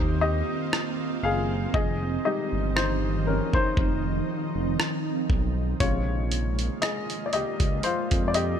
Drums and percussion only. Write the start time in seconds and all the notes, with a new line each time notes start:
0.73 cross-stick
1.74 kick
2.77 cross-stick
3.53 kick
3.77 kick
4.80 cross-stick
5.30 kick
5.80 kick, closed hi-hat
6.32 closed hi-hat
6.59 closed hi-hat
6.82 cross-stick, closed hi-hat
7.10 closed hi-hat
7.33 closed hi-hat
7.60 kick, closed hi-hat
7.83 closed hi-hat
8.11 kick, closed hi-hat
8.34 closed hi-hat